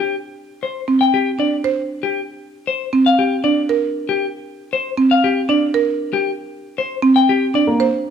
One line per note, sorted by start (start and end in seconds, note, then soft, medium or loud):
0.00 0.15 G4 medium
0.63 0.79 C5 soft
0.88 1.05 C4 medium
1.01 1.18 G5 soft
1.14 1.30 G4 medium
1.39 1.56 D4 soft
1.39 1.56 D5 soft
1.64 1.81 C5 medium
2.03 2.20 G4 medium
2.67 2.84 C5 medium
2.93 3.10 C4 medium
3.06 3.23 F5 medium
3.19 3.35 G4 medium
3.44 3.61 D4 medium
3.44 3.61 D5 soft
3.69 3.87 A#4 medium
4.09 4.25 G4 medium
4.73 4.89 C5 medium
4.97 5.15 C4 medium
5.11 5.28 F5 medium
5.24 5.41 G4 medium
5.49 5.66 D4 medium
5.49 5.66 D5 medium
5.74 5.92 A#4 medium
6.13 6.30 G4 medium
6.78 6.95 C5 medium
7.02 7.20 C4 medium
7.16 7.33 G5 medium
7.29 7.46 G4 medium
7.54 7.71 D4 medium
7.54 7.72 D5 medium
7.67 7.84 A#3 medium
7.80 7.97 C5 medium